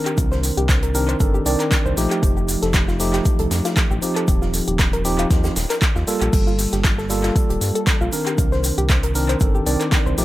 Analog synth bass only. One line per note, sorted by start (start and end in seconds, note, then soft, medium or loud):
0.18 0.52 C2 loud
0.57 1.16 C2 medium
1.20 1.40 G1 medium
1.46 1.56 C2 loud
1.86 1.94 C2 loud
1.97 2.08 A#1 medium
2.23 2.57 F1 loud
2.63 3.21 F1 medium
3.39 3.48 C2 medium
3.51 3.62 F2 medium
3.91 3.99 A1 loud
4.28 4.62 D#1 loud
4.68 5.26 D#1 medium
5.31 5.50 D#2 medium
5.56 5.67 D#1 loud
5.96 6.05 D#2 loud
6.21 6.30 A#1 medium
6.33 6.67 G1 loud
6.73 7.31 G1 medium
7.50 7.58 D1 medium
7.61 7.72 G2 medium
8.01 8.10 A#1 loud
8.38 8.72 C2 loud
8.78 9.36 C2 medium
9.41 9.61 G1 medium
9.66 9.77 C2 loud
10.06 10.15 C2 loud
10.18 10.25 A#1 medium